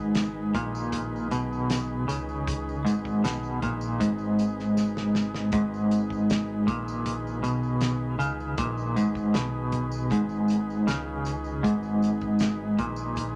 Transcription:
Already playing: fingered electric bass G#1, clean electric guitar G#2, transistor combo organ D#3 G#3 D#4 G#4 B4
0.15 snare, closed hi-hat, tambourine
0.54 fingered electric bass A#1, clean electric guitar A#2, kick, closed hi-hat
0.75 tambourine
0.92 kick, closed hi-hat, tambourine
1.16 tambourine
1.31 fingered electric bass B1, clean electric guitar B2, closed hi-hat, tambourine
1.52 tambourine
1.70 snare, closed hi-hat, tambourine
2.08 fingered electric bass C#2, clean electric guitar C#3, closed hi-hat, tambourine
2.29 tambourine
2.48 kick, closed hi-hat, tambourine
2.69 tambourine
2.85 fingered electric bass G#1, clean electric guitar G#2, closed hi-hat, tambourine
3.05 kick, tambourine
3.24 fingered electric bass B1, clean electric guitar B2, snare, closed hi-hat, tambourine
3.43 tambourine
3.62 fingered electric bass A#1, clean electric guitar A#2, kick, closed hi-hat, tambourine
3.81 tambourine
4.00 fingered electric bass G#1, clean electric guitar G#2, kick, closed hi-hat, tambourine
4.18 tambourine
4.39 closed hi-hat, tambourine
4.60 snare, tambourine
4.77 snare, tambourine
4.97 snare, tambourine
5.15 snare, tambourine
5.34 snare, tambourine
5.52 fingered electric bass G#1, clean electric guitar G#2, kick, closed hi-hat
5.74 tambourine
5.91 closed hi-hat, tambourine
6.10 kick, tambourine
6.30 snare, closed hi-hat, tambourine
6.67 fingered electric bass A#1, clean electric guitar A#2, kick, closed hi-hat
6.88 tambourine
7.06 kick, closed hi-hat, tambourine
7.27 tambourine
7.43 fingered electric bass B1, clean electric guitar B2, closed hi-hat, tambourine
7.63 tambourine
7.81 snare, closed hi-hat, tambourine
8.19 fingered electric bass C#2, clean electric guitar C#3, closed hi-hat, tambourine
8.40 tambourine
8.58 fingered electric bass A#1, clean electric guitar A#2, kick, closed hi-hat
8.77 tambourine
8.96 fingered electric bass G#1, clean electric guitar G#2, closed hi-hat, tambourine
9.15 kick, tambourine
9.34 fingered electric bass B1, clean electric guitar B2, snare, closed hi-hat, tambourine
9.72 kick, closed hi-hat
9.92 tambourine
10.10 fingered electric bass G#1, clean electric guitar G#2, kick, closed hi-hat, tambourine
10.29 tambourine
10.48 closed hi-hat, tambourine
10.70 tambourine
10.87 fingered electric bass C#2, clean electric guitar C#3, snare, closed hi-hat, tambourine
11.25 closed hi-hat, tambourine
11.44 tambourine
11.63 fingered electric bass G#1, clean electric guitar G#2, kick, closed hi-hat
11.83 tambourine
12.02 closed hi-hat, tambourine
12.21 kick, tambourine
12.39 snare, closed hi-hat, tambourine
12.79 fingered electric bass A#1, clean electric guitar A#2, kick, closed hi-hat
12.96 tambourine
13.16 kick, closed hi-hat, tambourine

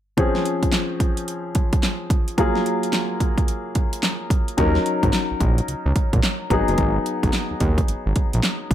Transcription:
0.17 grand piano F3 C4 C#4 G#4, kick, closed hi-hat
0.35 snare
0.45 closed hi-hat
0.63 kick, closed hi-hat
0.72 snare, clap, closed hi-hat
1.00 kick, closed hi-hat
1.17 closed hi-hat
1.28 closed hi-hat
1.55 kick, closed hi-hat
1.73 kick, closed hi-hat
1.83 snare, clap, closed hi-hat
2.10 kick, closed hi-hat
2.28 closed hi-hat
2.38 grand piano F#3 A#3 F4 G#4, kick, closed hi-hat
2.55 snare
2.66 closed hi-hat
2.83 closed hi-hat
2.93 snare, clap, closed hi-hat
3.20 kick, closed hi-hat
3.38 kick, closed hi-hat
3.48 closed hi-hat
3.75 kick, closed hi-hat
3.93 closed hi-hat
4.03 snare, clap, closed hi-hat
4.30 kick, closed hi-hat
4.48 closed hi-hat
4.57 analog synth bass D#2, grand piano F#3 C#4 D#4 A#4, kick, closed hi-hat
4.75 snare
4.86 closed hi-hat
5.03 analog synth bass G#1, kick, closed hi-hat
5.13 snare, clap, closed hi-hat
5.31 analog synth bass A#1
5.41 analog synth bass A#1, kick, closed hi-hat
5.58 closed hi-hat
5.68 analog synth bass C#2, closed hi-hat
5.86 analog synth bass C#2
5.96 kick, closed hi-hat
6.13 analog synth bass A#1, kick, closed hi-hat
6.23 snare, clap, closed hi-hat
6.50 analog synth bass G#1, grand piano F#3 B3 D#4 G#4, kick, closed hi-hat
6.68 analog synth bass F#1, closed hi-hat
6.78 analog synth bass G#1, kick, closed hi-hat
7.06 closed hi-hat
7.23 analog synth bass B1, kick, closed hi-hat
7.33 snare, clap, closed hi-hat
7.51 analog synth bass D#2
7.60 analog synth bass D#2, kick, closed hi-hat
7.78 kick, closed hi-hat
7.88 analog synth bass G#1, closed hi-hat
8.06 analog synth bass G#1
8.16 kick, closed hi-hat
8.33 analog synth bass A#1, closed hi-hat
8.43 snare, clap, closed hi-hat
8.71 analog synth bass B1, kick, closed hi-hat

